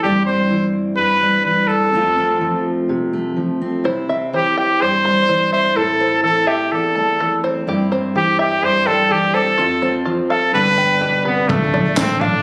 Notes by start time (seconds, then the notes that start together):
0.02 G2 E3 G3 C4 G4
0.07 E4
0.26 C4 C5
0.51 E3
0.97 G2 B4
1.22 G3
1.45 E3 B4
1.68 C4 A4
1.92 F2 F3 A3 C4 F4
2.18 C4
2.41 F3
2.89 C3
3.13 A3
3.36 F3
3.61 C4
3.84 C3 E4 C5
4.09 C4 E5
4.33 E3 G4 C5
4.57 G4 G5
4.82 G2 C5
5.05 G3 C6
5.29 E3 C5
5.52 C4 C5 E5
5.76 A2 E4 A4
6.00 C4 C5
6.23 E3 A4
6.47 G4 E5
6.71 E2 A4
6.95 A3 A5
7.20 E3 A4
7.44 C4 C5
7.67 G2 E4 G4
7.92 C4 C5
8.15 E3 G4
8.39 G4 E5
8.62 G2 G4 C5
8.86 G3 A4 G5
9.10 E3 G4
9.34 C4 A4 C5
9.58 F2 F4
9.82 C4 C5
10.05 F3 F4
10.29 A4 F5
10.53 G2 D3 B3 D4 G4 B4
10.78 D4 G5
11.01 B2 G4
11.25 C3 B3 B4
11.48 D2 D3 A3 D4 F4 A4 D5, kick, floor tom
11.63 D4 F4 A4
11.74 D5, floor tom
11.86 D4 F4 A4
11.96 A1 D3 A3 C4 D4 F4 A4, kick, snare, clap, floor tom, tambourine
12.20 A3 D4 F4 A4 F5, floor tom
12.32 D4 F4 A4